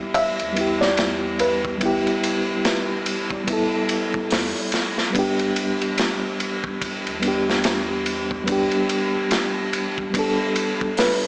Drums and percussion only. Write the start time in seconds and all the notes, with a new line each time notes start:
0.14 kick, ride
0.39 ride
0.56 ride
0.82 snare
0.97 snare, ride
1.39 ride
1.65 kick
1.81 kick, ride
2.07 ride
2.23 ride
2.65 snare, ride
3.06 ride
3.30 kick
3.47 kick, ride
3.89 ride
4.14 kick
4.30 snare, open hi-hat
4.72 snare, ride
4.98 snare
5.15 kick, ride
5.39 ride
5.56 ride
5.82 ride
5.98 snare, ride
6.40 ride
6.64 kick
6.81 kick, ride
7.07 ride
7.22 ride
7.50 snare
7.64 snare, ride
8.06 ride
8.31 kick
8.47 kick, ride
8.71 ride
8.89 ride
9.31 snare, ride
9.73 ride
9.98 kick
10.14 kick, ride
10.56 ride
10.81 kick
10.97 snare, open hi-hat